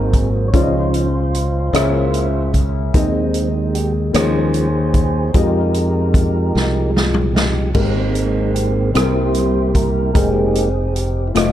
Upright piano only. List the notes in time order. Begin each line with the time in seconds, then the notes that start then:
Already playing: G#2 C4 F#4 G#4 D#5
0.53 C#3 C#4 F4 C5 D5
0.62 D#5
1.73 C#3 C#4 G#4 A#4 E5
2.94 D#3 C4 D#4 G#4 D#5
4.13 D#3 A#3 D#4 G#4 C#5
5.34 G#3 F4 G4 D#5
7.74 G#2 G#3 A#3 G4 A#4
7.81 C4
8.94 C3 G3 C4 E4 G#4
9.02 A#4
10.14 G#3 D#4 G4 A#4
11.35 A3 F4 F#4 D#5